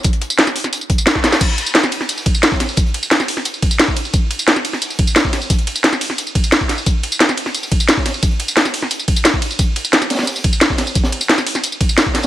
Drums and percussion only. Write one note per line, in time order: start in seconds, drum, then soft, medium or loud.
0.03 kick loud
0.03 closed hi-hat medium
0.03 closed hi-hat loud
0.03 tambourine medium
0.13 closed hi-hat soft
0.21 closed hi-hat medium
0.30 closed hi-hat soft
0.30 tambourine medium
0.39 snare loud
0.39 closed hi-hat loud
0.39 closed hi-hat medium
0.47 snare soft
0.47 closed hi-hat soft
0.47 tambourine soft
0.56 closed hi-hat medium
0.56 open hi-hat medium
0.64 snare soft
0.64 closed hi-hat soft
0.64 tambourine soft
0.73 closed hi-hat loud
0.73 closed hi-hat medium
0.73 tambourine soft
0.81 tambourine soft
0.90 kick loud
0.90 closed hi-hat medium
0.98 closed hi-hat soft
0.98 tambourine medium
1.06 snare loud
1.06 closed hi-hat loud
1.06 closed hi-hat medium
1.06 tambourine medium
1.15 kick medium
1.15 snare medium
1.24 snare medium
1.24 snare loud
1.24 closed hi-hat medium
1.32 snare loud
1.32 snare medium
1.32 closed hi-hat medium
1.32 tambourine soft
1.40 kick loud
1.40 closed hi-hat medium
1.40 closed hi-hat loud
1.40 crash loud
1.40 tambourine medium
1.58 closed hi-hat medium
1.58 ride medium
1.66 tambourine medium
1.74 snare loud
1.74 closed hi-hat medium
1.83 snare medium
1.83 closed hi-hat soft
1.83 tambourine soft
1.92 closed hi-hat medium
1.92 ride medium
2.01 snare soft
2.01 closed hi-hat soft
2.09 closed hi-hat loud
2.09 open hi-hat medium
2.09 tambourine soft
2.18 tambourine soft
2.26 kick loud
2.26 closed hi-hat medium
2.26 ride medium
2.35 tambourine medium
2.43 snare loud
2.43 closed hi-hat medium
2.43 closed hi-hat loud
2.43 tambourine medium
2.52 kick medium
2.52 snare medium
2.60 snare medium
2.60 snare soft
2.60 closed hi-hat medium
2.60 ride medium
2.69 tambourine soft
2.77 kick loud
2.77 closed hi-hat medium
2.77 tambourine soft
2.86 closed hi-hat soft
2.94 closed hi-hat medium
2.94 ride medium
3.03 closed hi-hat soft
3.03 tambourine medium
3.11 snare loud
3.11 closed hi-hat medium
3.20 snare medium
3.20 closed hi-hat soft
3.20 tambourine soft
3.28 closed hi-hat medium
3.28 open hi-hat medium
3.28 ride medium
3.37 snare soft
3.45 closed hi-hat medium
3.45 tambourine soft
3.54 tambourine soft
3.62 kick loud
3.62 closed hi-hat medium
3.62 ride medium
3.71 closed hi-hat soft
3.71 tambourine medium
3.79 snare loud
3.79 closed hi-hat loud
3.79 tambourine soft
3.88 kick medium
3.96 closed hi-hat medium
3.96 ride medium
4.05 tambourine soft
4.13 kick loud
4.13 closed hi-hat medium
4.13 tambourine soft
4.31 closed hi-hat medium
4.31 ride medium
4.39 tambourine medium
4.47 snare loud
4.47 closed hi-hat loud
4.47 closed hi-hat medium
4.56 snare medium
4.56 closed hi-hat soft
4.56 tambourine soft
4.65 closed hi-hat medium
4.65 ride medium
4.73 snare soft
4.73 closed hi-hat soft
4.82 closed hi-hat medium
4.82 open hi-hat medium
4.82 tambourine soft
4.90 tambourine soft
4.99 kick loud
4.99 closed hi-hat medium
4.99 ride medium
5.07 tambourine medium
5.16 snare loud
5.16 closed hi-hat medium
5.16 tambourine soft
5.24 kick medium
5.24 snare medium
5.33 snare medium
5.33 snare soft
5.33 closed hi-hat medium
5.33 ride medium
5.41 tambourine soft
5.50 kick loud
5.50 closed hi-hat medium
5.50 tambourine soft
5.59 closed hi-hat soft
5.67 closed hi-hat medium
5.67 ride medium
5.75 closed hi-hat soft
5.75 tambourine medium
5.84 snare loud
5.84 closed hi-hat medium
5.84 closed hi-hat loud
5.93 snare soft
5.93 closed hi-hat soft
5.93 tambourine soft
6.01 closed hi-hat medium
6.01 open hi-hat medium
6.01 ride medium
6.10 snare soft
6.18 closed hi-hat medium
6.18 tambourine soft
6.27 tambourine soft
6.35 kick loud
6.35 closed hi-hat medium
6.35 ride medium
6.44 closed hi-hat soft
6.44 tambourine medium
6.52 snare loud
6.52 closed hi-hat medium
6.52 closed hi-hat loud
6.52 tambourine soft
6.61 kick medium
6.69 snare soft
6.69 closed hi-hat medium
6.69 ride medium
6.78 tambourine soft
6.86 kick loud
6.86 closed hi-hat medium
6.86 tambourine soft
7.03 closed hi-hat medium
7.03 ride medium
7.12 tambourine medium
7.20 snare loud
7.20 closed hi-hat medium
7.29 snare soft
7.29 closed hi-hat soft
7.29 tambourine soft
7.37 closed hi-hat medium
7.37 ride medium
7.46 snare soft
7.46 closed hi-hat soft
7.55 closed hi-hat medium
7.55 open hi-hat medium
7.55 tambourine soft
7.63 tambourine soft
7.71 kick loud
7.71 closed hi-hat medium
7.71 ride medium
7.80 tambourine medium
7.88 snare loud
7.88 closed hi-hat medium
7.88 tambourine medium
7.97 kick medium
7.97 snare medium
8.05 snare medium
8.05 snare soft
8.05 closed hi-hat medium
8.05 ride medium
8.14 tambourine soft
8.23 kick loud
8.23 closed hi-hat medium
8.23 tambourine medium
8.31 closed hi-hat soft
8.39 closed hi-hat medium
8.39 ride medium
8.48 closed hi-hat soft
8.48 tambourine medium
8.57 snare loud
8.57 closed hi-hat medium
8.65 snare soft
8.65 closed hi-hat soft
8.65 tambourine soft
8.74 closed hi-hat medium
8.74 open hi-hat medium
8.74 ride medium
8.82 snare soft
8.91 closed hi-hat loud
8.91 tambourine medium
8.99 tambourine soft
9.08 kick loud
9.08 closed hi-hat medium
9.08 ride medium
9.16 closed hi-hat soft
9.16 tambourine medium
9.24 snare loud
9.24 closed hi-hat medium
9.24 closed hi-hat loud
9.24 tambourine medium
9.33 kick medium
9.42 closed hi-hat medium
9.42 ride medium
9.51 tambourine soft
9.59 kick loud
9.59 closed hi-hat loud
9.59 closed hi-hat medium
9.59 tambourine medium
9.76 closed hi-hat medium
9.76 ride medium
9.85 tambourine medium
9.93 snare loud
9.93 closed hi-hat loud
9.93 closed hi-hat medium
10.02 snare soft
10.02 closed hi-hat soft
10.02 tambourine soft
10.10 snare loud
10.10 closed hi-hat medium
10.10 ride medium
10.15 snare medium
10.15 closed hi-hat medium
10.19 snare medium
10.19 snare soft
10.19 closed hi-hat medium
10.23 snare medium
10.23 closed hi-hat medium
10.27 closed hi-hat medium
10.27 open hi-hat medium
10.27 tambourine medium
10.36 tambourine soft
10.44 kick loud
10.44 closed hi-hat medium
10.44 ride medium
10.53 tambourine medium
10.61 snare loud
10.61 closed hi-hat medium
10.61 closed hi-hat loud
10.61 tambourine medium
10.70 kick medium
10.70 snare medium
10.78 snare loud
10.78 snare soft
10.78 closed hi-hat medium
10.78 ride medium
10.87 tambourine soft
10.95 kick loud
10.95 closed hi-hat loud
10.95 closed hi-hat medium
10.95 tambourine medium
11.03 snare loud
11.03 closed hi-hat medium
11.12 closed hi-hat medium
11.12 ride medium
11.21 closed hi-hat medium
11.21 tambourine medium
11.29 snare loud
11.29 closed hi-hat loud
11.38 snare medium
11.38 closed hi-hat soft
11.38 tambourine soft
11.47 closed hi-hat medium
11.47 open hi-hat medium
11.47 ride medium
11.55 snare soft
11.55 closed hi-hat soft
11.55 tambourine soft
11.63 closed hi-hat medium
11.63 closed hi-hat loud
11.63 tambourine soft
11.72 tambourine soft
11.81 kick loud
11.81 closed hi-hat medium
11.81 ride medium
11.89 closed hi-hat soft
11.89 tambourine medium
11.98 snare loud
11.98 closed hi-hat loud
11.98 closed hi-hat medium
11.98 tambourine medium
12.06 kick medium
12.14 snare loud
12.14 snare soft
12.14 closed hi-hat medium
12.14 ride medium
12.23 closed hi-hat medium
12.23 tambourine soft